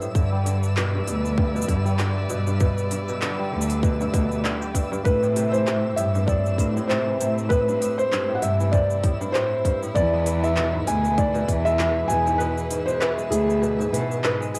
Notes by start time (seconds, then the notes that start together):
Already playing: A3 E4 A4 C5 E5 E6
0.02 A2, cabasa
0.14 G2 D3 G3 G4 B4 D5, kick, cabasa
0.32 G3
0.45 D3, open hi-hat, cabasa
0.63 cabasa
0.77 B2, clap, cabasa
0.94 G2
1.07 D2 B2, open hi-hat, cabasa
1.25 cabasa
1.38 G2, kick
1.55 B2, cabasa
1.62 cabasa
1.68 G2 D3, kick, open hi-hat
1.85 G3, cabasa
1.99 D3, clap, cabasa
2.29 G2 B2, cabasa
2.47 G2, cabasa
2.60 B2, kick, cabasa
2.78 cabasa
2.91 G2, open hi-hat, cabasa
3.08 B2, cabasa
3.22 D3, clap, cabasa
3.39 G3
3.52 D2 D3
3.61 cabasa
3.70 open hi-hat, cabasa
3.83 B2, kick, cabasa
4.01 G2, cabasa
4.13 D2 B2, kick, open hi-hat, cabasa
4.32 cabasa
4.43 D3, clap, cabasa
4.61 G4, cabasa
4.74 G2, kick, open hi-hat, cabasa
4.92 G2, cabasa
5.05 G2 A2 A3 C4 E4 B4, kick, cabasa
5.23 A2, cabasa
5.36 C3, open hi-hat, cabasa
5.52 E3 C5, cabasa
5.67 C3, clap, cabasa
5.96 G2 A2 E5, open hi-hat, cabasa
6.15 G2, cabasa
6.27 A2 D5, kick, cabasa
6.46 cabasa
6.58 G2 A2, kick, open hi-hat, cabasa
6.77 A2, cabasa
6.88 C3 C5, clap, cabasa
7.07 E3
7.20 A2 C3, open hi-hat, cabasa
7.38 cabasa
7.49 A2 B4, kick, cabasa
7.68 G2, cabasa
7.81 A2, open hi-hat, cabasa
7.98 C5, cabasa
8.12 G2, clap, cabasa
8.29 A2
8.35 F#5
8.42 G2 C3 E5, open hi-hat, cabasa
8.60 E3, cabasa
8.72 C3 D5, kick, cabasa
8.90 cabasa
9.04 A2, kick, open hi-hat
9.21 G2, cabasa
9.32 A2 C5, clap, cabasa
9.65 G2, kick, open hi-hat
9.82 A2, cabasa
9.95 E2 E3 G#4 B4 D5, kick, cabasa
10.13 G#3
10.26 E3, open hi-hat, cabasa
10.44 E5, cabasa
10.56 B2, clap, cabasa
10.73 G#2
10.87 D2 B2 G#5, open hi-hat, cabasa
11.05 cabasa
11.18 G#2 D5, kick, cabasa
11.34 B2, cabasa
11.48 E2 E3, kick, open hi-hat, cabasa
11.65 G#3 E5, cabasa
11.79 E3, clap, cabasa
12.08 E2 B2 G#5, cabasa
12.26 G#2, cabasa
12.38 B2 B4, cabasa
12.58 cabasa
12.71 G#2, open hi-hat, cabasa
12.86 B2 C5, cabasa
13.00 E3 B4, clap, cabasa
13.17 G#3, cabasa
13.31 D2 E3 G#4, open hi-hat, cabasa
13.50 cabasa
13.62 B2, cabasa
13.79 G#2, cabasa
13.93 B2 E3, open hi-hat, cabasa
14.11 cabasa
14.23 G#2 B4, clap, cabasa
14.40 G#3, cabasa
14.54 G#4, open hi-hat, cabasa